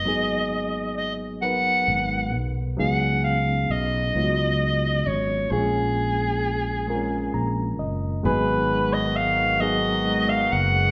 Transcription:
<<
  \new Staff \with { instrumentName = "Soprano saxophone" } { \time 6/8 \key gis \dorian \tempo 4. = 44 dis''4 dis''8 fis''4 r8 | fis''8 eis''8 dis''4. cis''8 | gis'2~ gis'8 r8 | b'8. dis''16 eis''8 dis''8. eis''16 fis''8 | }
  \new Staff \with { instrumentName = "Analog synth pad" } { \time 6/8 \key gis \dorian r2. | r2. | r2. | <fis gis gis' ais''>2. | }
  \new Staff \with { instrumentName = "Reed electric piano" } { \time 6/8 \key gis \dorian << { r2. | r2. | r2 ais''8 dis''8 | r2. | } \\ { <fis ais b dis' gis'>4 r8 <fis b dis' ais' b'>4 r8 | <fis b cis' dis' gis'>4 r8 <fis b cis' dis' eis' fis'>4 r8 | <gis ais bis cis' eis' gis'>4 r8 <gis ais bis cis' eis' ais'>4 r8 | <fis gis b dis' gis'>4 r8 <fis ais b dis' gis'>4 r8 | } >> }
  \new Staff \with { instrumentName = "Horn section" } { \time 6/8 \key gis \dorian r2. | r2. | r2. | <dis b fis'>2. | }
  \new Staff \with { instrumentName = "Fretless electric bass" } { \clef bass \time 6/8 \key gis \dorian gis,,2 gis,,8 b,,8 | cis,4 b,,8 cis,4 gis,,8 | ais,,2 ais,,8 fis,,8 | gis,,2~ gis,,8 fis,,8 | }
>>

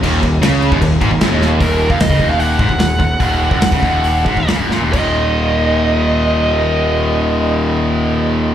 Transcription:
<<
  \new Staff \with { instrumentName = "Lead electric guitar" } { \time 4/4 \key ees \minor \tempo 4 = 139 r1 | bes'8. f''16 ees''8. f''16 ges''2~ | ges''2. r4 | ees''1~ |
ees''1 | }
  \new Staff \with { instrumentName = "Distorted electric guitar" } { \clef bass \time 4/4 \key ees \minor ees,8 ees,8 des8. ees,16 ees,8 aes,16 ees,16 ges,16 ees,8. | ees,8. ges,16 ees,16 des16 ees,4 aes,16 ees,16 ees,8 ees,8 | ees,8. ges,16 ees,16 des16 ees,4 aes,16 ees,16 des16 ges,16 bes,16 ees,16 | <ees, bes, ees>1~ |
<ees, bes, ees>1 | }
  \new Staff \with { instrumentName = "Distorted electric guitar" } { \clef bass \time 4/4 \key ees \minor ees,8 ees,8 des8. ees,16 ees,8 aes,16 ees,16 ges,16 ees,8. | ees,8. ges,16 ees,16 des16 ees,4 aes,16 ees,16 ees,8 ees,8 | ees,8. ges,16 ees,16 des16 ees,4 aes,16 ees,16 des16 ges,16 bes,16 ees,16 | <ees, bes, ees>1~ |
<ees, bes, ees>1 | }
  \new Staff \with { instrumentName = "Distorted electric guitar" } { \clef bass \time 4/4 \key ees \minor ees,8 ees,8 des8. ees,16 ees,8 aes,16 ees,16 ges,16 ees,8. | r1 | r1 | r1 |
r1 | }
  \new Staff \with { instrumentName = "Picked electric bass" } { \clef bass \time 4/4 \key ees \minor ees,,8 ees,,8 des,8. ees,,16 ees,,8 aes,,16 ees,,16 ges,,16 ees,,8. | ees,,8. ges,,16 ees,,16 des,16 ees,,4 aes,,16 ees,,16 ees,,8 ees,,8 | ees,,8. ges,,16 ees,,16 des,16 ees,,4 aes,,16 ees,,16 des,16 ges,,16 bes,,16 ees,,16 | ees,,1~ |
ees,,1 | }
  \new DrumStaff \with { instrumentName = "Drums" } \drummode { \time 4/4 <cymc bd>8 <cymc bd>8 <cymc sn>8 cymc16 bd16 <cymc bd>8 <cymc bd>16 bd16 <cymc sn>8 sn8 | <hho bd>8. bd16 <hho sn>16 bd16 bd8 hho8 bd16 bd16 <hho sn>8 bd8 | <hho bd>8. bd16 <hho sn>16 bd16 bd8 hho8 bd16 bd16 <hho sn>8 sn8 | <cymc bd>4 r4 r4 r4 |
r4 r4 r4 r4 | }
>>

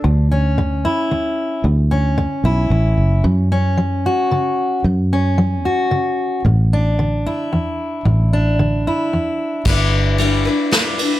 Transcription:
<<
  \new Staff \with { instrumentName = "Steel-string acoustic guitar" } { \time 3/4 \key a \mixolydian \tempo 4 = 112 r2. | r2. | r2. | r2. |
r2. | r2. | <g d' e' b'>4 <g d' e' b'>8 <d' e' b'>8 <g d' e' b'>8 <d' e' b'>8 | }
  \new Staff \with { instrumentName = "Steel-string acoustic guitar" } { \clef bass \time 3/4 \key a \mixolydian << { r8 cis'4 e'4. | r8 cis'4 e'4. | r8 cis'4 fis'4. | r8 cis'4 fis'4. |
r8 d'4 e'4.~ | e'8 d'4 e'4.~ | e'2. | } \\ { d,4 d4 d,4 | d,4 d4 d,4 | fis,4 fis4 cis4 | fis,4 fis4 cis4 |
a,4 d4 e,4 | a,4 d4 e,4 | r2. | } >> }
  \new Staff \with { instrumentName = "Fingered electric bass" } { \clef bass \time 3/4 \key a \mixolydian d,2 r4 | d,4. b,,8 a,,8 fis,,8 | fis,2 r4 | fis,2 r4 |
a,,2 r4 | a,,2 r4 | g,,2 r4 | }
  \new DrumStaff \with { instrumentName = "Drums" } \drummode { \time 3/4 r4 r4 r4 | r4 r4 r4 | r4 r4 r4 | r4 r4 r4 |
r4 r4 r4 | r4 r4 r4 | <cymc bd>4 cymr4 <cymr sn>8 cymr8 | }
>>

